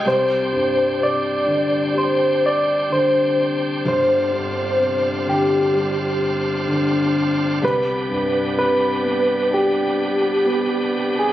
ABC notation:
X:1
M:4/4
L:1/16
Q:1/4=64
K:Gphr
V:1 name="Soft synth lead"
c4 d4 c2 d2 c4 | c6 G8 z2 | =B4 B4 G6- G A |]
V:2 name="Tonewheel organ"
g16 | F16 | C,16 |]
V:3 name="Tonewheel organ"
[C,CD]16- | [C,CD]16 | [G,=B,]16 |]
V:4 name="Grand piano" clef=bass
C,,2 G,,2 C,2 D,2 G,4 D,4 | G,,,2 G,,2 C,2 D,2 G,4 D,4 | C,,2 G,,2 C,2 =B,2 D4 B,4 |]